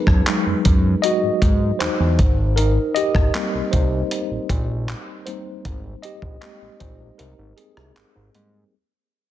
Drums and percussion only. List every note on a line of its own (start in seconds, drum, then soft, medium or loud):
0.07 kick medium
0.07 cross-stick medium
0.27 clap loud
0.27 closed hi-hat medium
0.65 kick medium
0.65 closed hi-hat medium
1.04 closed hi-hat medium
1.42 kick medium
1.42 closed hi-hat medium
1.80 clap loud
1.80 closed hi-hat medium
2.19 kick loud
2.19 closed hi-hat medium
2.57 closed hi-hat medium
2.96 closed hi-hat medium
3.15 kick medium
3.15 cross-stick medium
3.34 clap loud
3.34 closed hi-hat medium
3.73 kick medium
3.73 closed hi-hat medium
4.11 closed hi-hat medium
4.49 kick medium
4.49 closed hi-hat medium
4.88 clap loud
4.88 closed hi-hat medium
5.27 closed hi-hat medium
5.65 kick loud
5.65 closed hi-hat medium
6.03 closed hi-hat medium
6.22 kick medium
6.42 clap loud
6.42 closed hi-hat medium
6.80 kick medium
6.80 closed hi-hat medium
7.19 closed hi-hat medium
7.58 closed hi-hat medium
7.77 cross-stick loud
7.96 clap loud
7.96 closed hi-hat medium
8.35 closed hi-hat medium